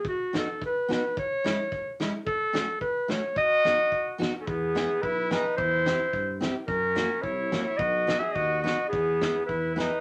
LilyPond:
<<
  \new Staff \with { instrumentName = "Clarinet" } { \time 2/4 \key e \major \tempo 4 = 108 fis'8 a'8 b'8 b'8 | cis''4. r8 | a'4 b'8 cis''8 | dis''4. r16. a'32 |
gis'4 b'8 b'8 | c''4. r8 | ais'4 cis''8. cis''16 | dis''8. e''16 dis''8 dis''8 |
gis'4 b'8 b'8 | }
  \new Staff \with { instrumentName = "Trumpet" } { \time 2/4 \key e \major r2 | r2 | r2 | fis'4. r16. cis'32 |
b4 e'8 dis'8 | e'4. r8 | cis'4 e'8. e'16 | fis'8. gis'16 fis'8 fis'8 |
b4 e'8 dis'8 | }
  \new Staff \with { instrumentName = "Steel-string acoustic guitar" } { \time 2/4 \key e \major r8 <b dis' fis'>8 r8 <b dis' fis'>8 | r8 <gis cis' e'>8 r8 <gis cis' e'>8 | r8 <a cis' fis'>8 r8 <a cis' fis'>8 | r8 <b dis' fis'>8 r8 <b dis' fis'>8 |
r8 <b e' gis'>8 r8 <b e' gis'>8 | r8 <c' e' g'>8 r8 <c' e' g'>8 | r8 <ais cis' fis'>8 r8 <ais cis' fis'>8 | r8 <b dis' fis'>8 r8 <b dis' fis'>8 |
r8 <b e' gis'>8 r8 <b e' gis'>8 | }
  \new Staff \with { instrumentName = "Tuba" } { \clef bass \time 2/4 \key e \major r2 | r2 | r2 | r2 |
e,4 b,,4 | e,4 g,4 | fis,4 c,4 | b,,4 dis,4 |
e,4 e,4 | }
  \new DrumStaff \with { instrumentName = "Drums" } \drummode { \time 2/4 bd8 sn8 bd8 sn8 | bd8 sn8 bd8 sn8 | bd8 sn8 bd8 sn8 | bd8 sn8 bd8 sn8 |
bd8 sn8 bd8 sn8 | bd8 sn8 bd8 sn8 | bd8 sn8 bd8 sn8 | bd8 sn8 bd8 sn8 |
bd8 sn8 bd8 sn8 | }
>>